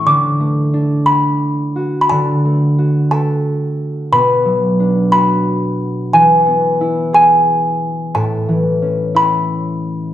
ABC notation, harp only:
X:1
M:6/8
L:1/8
Q:3/8=59
K:D
V:1 name="Harp"
D, A, D3 F | D, A, F A3 | B,, F, D F3 | E, B, E ^G3 |
A,, E, C E3 |]